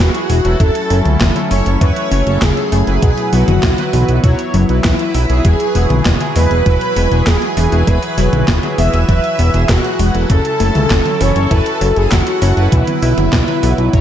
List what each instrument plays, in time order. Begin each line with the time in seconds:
Already playing: analog synth pad E3 E4 F#4 B4 G#5, analog polysynth F#3 E4 G#4
0.00 analog synth bass E1, synth arpeggio sound B3, string machine F#4, soft synth lead F#4
0.15 analog polysynth F#3 E4 G#4, closed hi-hat
0.30 analog synth bass E1, synth arpeggio sound E3, open hi-hat
0.45 analog synth bass E1, analog polysynth F#3 E4 A4, closed hi-hat
0.60 analog synth bass F#1, analog synth pad F#3 A3 C#4, synth arpeggio sound E4, string machine A4, soft synth lead A4, kick, closed hi-hat
0.75 closed hi-hat
0.90 analog synth bass F#1, analog polysynth F#3 E4 A4, synth arpeggio sound F#3, open hi-hat
1.05 analog synth bass C#2, closed hi-hat, mid tom
1.21 analog synth bass F#1, synth arpeggio sound E3, kick, snare, clap, closed hi-hat
1.36 analog polysynth F#3 E4 A4, closed hi-hat, mid tom
1.51 analog synth bass F#1, synth arpeggio sound C#4, soft synth lead C#5, string machine C#5, open hi-hat
1.66 analog synth bass F#1, closed hi-hat
1.81 analog synth bass F#1, synth arpeggio sound E3, analog polysynth F#3 E4 B4, string machine C#5, soft synth lead C#5, kick, closed hi-hat
1.96 closed hi-hat
2.12 analog synth bass F#1, synth arpeggio sound C#4, open hi-hat
2.27 analog synth bass F#1, analog polysynth F#3 E4 A4, closed hi-hat
2.42 analog synth bass F#1, synth arpeggio sound C#3, soft synth lead G#4, string machine G#4, kick, snare, clap, closed hi-hat
2.57 analog polysynth F#3 E4 A4, closed hi-hat
2.72 analog synth bass F#1, synth arpeggio sound A3, open hi-hat
2.87 analog synth bass F#1, analog polysynth F#3 E4 B4, closed hi-hat
3.02 analog synth bass B1, synth arpeggio sound B2, analog synth pad B3, string machine G#4, soft synth lead G#4, kick, closed hi-hat
3.18 closed hi-hat
3.33 analog synth bass B1, analog polysynth F#3 E4 B4, synth arpeggio sound B3, soft synth lead F#4, string machine F#4, open hi-hat
3.48 analog synth bass F#1, closed hi-hat, mid tom
3.63 analog synth bass B1, synth arpeggio sound E4, kick, snare, clap, closed hi-hat
3.78 analog polysynth F#3 E4 B4, closed hi-hat, mid tom
3.93 analog synth bass B1, synth arpeggio sound E3, open hi-hat
4.08 analog synth bass B1, closed hi-hat
4.24 analog synth bass B1, analog polysynth F#3 E4 C#5, synth arpeggio sound F#4, kick, closed hi-hat
4.39 closed hi-hat
4.54 analog synth bass F#1, synth arpeggio sound F#3, open hi-hat
4.69 analog synth bass B1, analog polysynth F#3 E4 B4, closed hi-hat
4.84 analog synth bass B1, synth arpeggio sound E3, soft synth lead E4, string machine E4, kick, snare, clap, closed hi-hat
4.99 analog polysynth F#3 E4 B4, closed hi-hat
5.14 analog synth bass B1, synth arpeggio sound E4, open hi-hat
5.30 analog synth bass B1, analog polysynth F#3 E4 G#4, closed hi-hat
5.45 analog synth bass E1, synth arpeggio sound E3, analog synth pad E3 F#4 B4 G#5, string machine G#4, soft synth lead G#4, kick, closed hi-hat
5.60 closed hi-hat
5.75 analog synth bass E1, analog polysynth F#3 E4 G#4, synth arpeggio sound B3, open hi-hat
5.90 analog synth bass B1, closed hi-hat, mid tom
6.05 analog synth bass E1, synth arpeggio sound B2, kick, snare, clap, closed hi-hat
6.21 analog polysynth F#3 E4 G#4, closed hi-hat, mid tom
6.36 analog synth bass E1, synth arpeggio sound G#3, string machine B4, soft synth lead B4, open hi-hat
6.51 analog synth bass E1, closed hi-hat
6.66 analog synth bass E1, synth arpeggio sound B2, analog polysynth F#3 E4 B4, soft synth lead B4, string machine B4, kick, closed hi-hat
6.81 closed hi-hat
6.96 analog synth bass E1, synth arpeggio sound G#3, open hi-hat
7.12 analog synth bass E1, analog polysynth F#3 E4 G#4, closed hi-hat
7.27 analog synth bass E1, synth arpeggio sound B3, soft synth lead G#4, string machine G#4, kick, snare, clap, closed hi-hat
7.42 analog polysynth F#3 E4 G#4, closed hi-hat
7.57 analog synth bass E1, synth arpeggio sound E3, open hi-hat
7.72 analog synth bass E1, analog polysynth F#3 E4 G#4, closed hi-hat
7.87 analog synth bass E1, synth arpeggio sound E4, soft synth lead B4, string machine B4, kick, closed hi-hat
8.03 closed hi-hat
8.18 analog synth bass E1, analog polysynth F#3 E4 G#4, synth arpeggio sound F#3, open hi-hat
8.33 analog synth bass B1, closed hi-hat, mid tom
8.48 analog synth bass E1, synth arpeggio sound E3, kick, snare, clap, closed hi-hat
8.63 analog polysynth F#3 E4 G#4, closed hi-hat, mid tom
8.78 analog synth bass E1, synth arpeggio sound B3, string machine E5, soft synth lead E5, open hi-hat
8.93 analog synth bass E1, closed hi-hat
9.09 analog synth bass E1, synth arpeggio sound E3, analog polysynth F#3 E4 B4, soft synth lead E5, string machine E5, kick, closed hi-hat
9.24 closed hi-hat
9.39 analog synth bass E1, synth arpeggio sound B3, open hi-hat
9.54 analog synth bass E1, analog polysynth F#3 E4 G#4, closed hi-hat
9.69 analog synth bass E1, synth arpeggio sound B2, soft synth lead F#4, string machine F#4, kick, snare, clap, closed hi-hat
9.84 analog polysynth F#3 E4 G#4, closed hi-hat
9.99 analog synth bass E1, synth arpeggio sound G#3, open hi-hat
10.15 analog synth bass E1, analog polysynth F#3 E4 A4, closed hi-hat
10.30 analog synth bass F#1, synth arpeggio sound C#3, analog synth pad F#3 C#4 E4 A4, soft synth lead A4, string machine A4, kick, closed hi-hat
10.45 closed hi-hat
10.60 analog synth bass F#1, analog polysynth F#3 E4 A4, synth arpeggio sound A3, open hi-hat
10.75 analog synth bass C#2, closed hi-hat, mid tom
10.90 analog synth bass F#1, synth arpeggio sound C#4, kick, snare, clap, closed hi-hat
11.06 analog polysynth F#3 E4 A4, closed hi-hat, mid tom
11.21 analog synth bass F#1, synth arpeggio sound E3, soft synth lead C#5, string machine C#5, open hi-hat
11.36 analog synth bass F#1, closed hi-hat
11.51 analog synth bass F#1, analog polysynth F#3 E4 B4, synth arpeggio sound E4, string machine A4, soft synth lead A4, kick, closed hi-hat
11.66 closed hi-hat
11.81 analog synth bass F#1, synth arpeggio sound F#3, open hi-hat
11.96 analog synth bass F#1, analog polysynth F#3 E4 A4, string machine G#4, soft synth lead G#4, closed hi-hat
12.12 analog synth bass F#1, synth arpeggio sound E3, string machine F#4, soft synth lead F#4, kick, snare, clap, closed hi-hat
12.27 analog polysynth F#3 E4 A4, closed hi-hat
12.42 analog synth bass F#1, synth arpeggio sound C#4, open hi-hat
12.57 analog synth bass F#1, analog polysynth F#3 E4 B4, closed hi-hat
12.72 analog synth bass B1, synth arpeggio sound E3, analog synth pad F#3 B3, string machine E4, soft synth lead E4, kick, closed hi-hat
12.87 closed hi-hat, mid tom
13.02 analog synth bass B1, analog polysynth F#3 E4 B4, synth arpeggio sound E4, open hi-hat
13.18 analog synth bass F#1, closed hi-hat, mid tom
13.33 analog synth bass B1, synth arpeggio sound B2, kick, snare, clap, closed hi-hat
13.48 analog polysynth F#3 E4 B4, closed hi-hat, mid tom
13.63 analog synth bass B1, synth arpeggio sound B3, open hi-hat
13.78 analog synth bass B1, closed hi-hat
13.93 analog synth bass B1, synth arpeggio sound B2, analog polysynth F#3 E4 C#5, kick, closed hi-hat